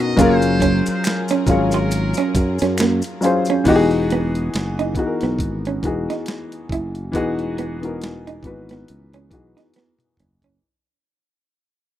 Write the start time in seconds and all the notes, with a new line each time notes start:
Already playing: B2 B3 C#4 D#4 F#4 A#4
0.01 D#5
0.17 F#1 F#3 A#3 C#4 F4 G#4 A#4 C5, kick, closed hi-hat, maracas
0.21 A#4
0.42 closed hi-hat, maracas
0.60 C#4, kick, closed hi-hat, maracas
0.86 C5, muted fingered electric bass stroke, closed hi-hat, maracas
1.04 finger snap, snare, closed hi-hat, maracas
1.28 C#4, closed hi-hat, maracas
1.46 G#1 F#3 C#4 F4 G#4, muted hollow-body jazz guitar stroke, kick, closed hi-hat, maracas
1.51 A#4 C#5
1.71 F4, closed hi-hat, maracas
1.91 closed hi-hat, maracas
2.14 C#4, closed hi-hat, maracas
2.35 F#2, muted hollow-body jazz guitar stroke, kick, closed hi-hat, maracas
2.59 F#2 C#4, snare, closed hi-hat, maracas
2.78 A#3, finger snap, snare, closed hi-hat, maracas
3.02 closed hi-hat, maracas
3.21 F#3 C#4 F4 G#4, closed hi-hat, maracas
3.25 C5, muted hollow-body jazz guitar stroke
3.45 closed hi-hat, maracas
3.50 C#4
3.64 E1 E3 B3 D#4 F#4, kick, closed hi-hat, crash
3.69 G#3 G4
3.75 G#4
3.91 closed hi-hat
4.10 B3, closed hi-hat
4.35 closed hi-hat
4.54 F#1, snare, closed hi-hat
4.79 D#4, closed hi-hat
4.95 E3 B3 D#4, kick, closed hi-hat
4.99 F#4 G#4, muted hollow-body jazz guitar stroke
5.06 A#4
5.21 B1 B3, snare, closed hi-hat
5.39 G#1, kick, closed hi-hat
5.65 C#4, closed hi-hat
5.82 E1 E3 B3 D#4 F#4, muted hollow-body jazz guitar stroke, kick, closed hi-hat
5.87 G#4
6.10 D#4, snare, closed hi-hat
6.26 snare, closed hi-hat
6.52 closed hi-hat
6.69 F#1 E4, kick, closed hi-hat
6.95 closed hi-hat
7.12 E1 E3 G#3 B3 D#4 F#4, kick, closed hi-hat
7.17 G#4
7.39 closed hi-hat
7.58 B3, closed hi-hat
7.80 E3 B3 D#4 F#4, closed hi-hat
7.85 A#4
8.02 snare, closed hi-hat
8.27 D#4, closed hi-hat
8.43 G#1 E3 B3 D#4 F#4, muted hollow-body jazz guitar stroke, kick, closed hi-hat
8.47 B4
8.69 B3, snare, closed hi-hat
8.88 C#2, closed hi-hat
9.13 C#4, closed hi-hat
9.29 B1 E3 B3 D#4 F#4, muted hollow-body jazz guitar stroke, kick, closed hi-hat
9.34 G#4
9.57 D#4, snare, closed hi-hat
9.74 B3, snare, closed hi-hat
9.99 closed hi-hat, high tom
10.17 F#1, muted hollow-body jazz guitar stroke, closed hi-hat, mid tom
10.42 C#4, closed hi-hat, floor tom